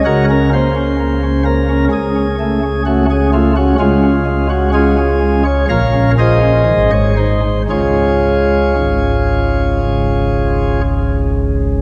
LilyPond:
<<
  \new Staff \with { instrumentName = "Pipe organ" } { \time 4/4 \key des \major \tempo 4 = 62 <ges' bes' des''>16 bes'16 c''4 bes'8 aes'4 <a des' ges'>16 aes'16 f'16 ges'16 | <aes des' f'>8. ges'16 <des' f' aes'>8. des''16 <bes' des'' f''>8 <aes' c'' ees''>8. des''16 c''8 | <f' aes' des''>2. r4 | }
  \new Staff \with { instrumentName = "Pipe organ" } { \clef bass \time 4/4 \key des \major << { des16 des'16 bes16 des'16 bes16 des'16 bes16 des'16 des16 des'16 a16 des'16 r16 des'16 a16 des'16 | des16 des'16 aes16 des'16 aes16 des'16 aes16 des'16 bes,16 des'16 f'16 des'16 aes,16 aes16 ees'16 aes16 | <des aes des'>4 aes,4 des,2 | } \\ { des,2 des,2 | des,2 bes,,4 aes,,4 | des,4 aes,,4 des,,2 | } >> }
>>